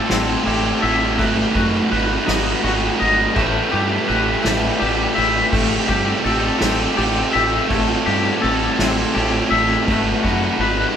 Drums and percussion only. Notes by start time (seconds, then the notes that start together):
0.10 snare, ride
0.46 ride
0.83 ride
1.19 kick, ride
1.55 kick, ride
1.92 ride
2.28 snare, ride
2.64 ride
3.00 ride
3.36 kick, crash
3.72 ride
4.08 ride
4.45 snare, ride
4.81 ride
5.17 ride
5.52 kick, ride
5.89 kick, ride
6.24 ride
6.61 snare, ride
6.98 ride
7.34 ride
7.70 kick, ride
8.07 ride
8.43 ride
8.79 snare, ride
9.16 ride
9.52 ride
9.88 kick, ride
10.24 kick, ride
10.61 ride